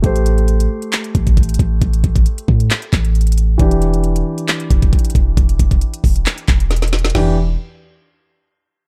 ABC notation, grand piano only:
X:1
M:4/4
L:1/8
Q:1/4=135
K:Em
V:1 name="Grand piano"
[A,Gc]8- | [A,Gc]8 | [E,DG]8- | [E,DG]8 |
[E,DG] z6 z |]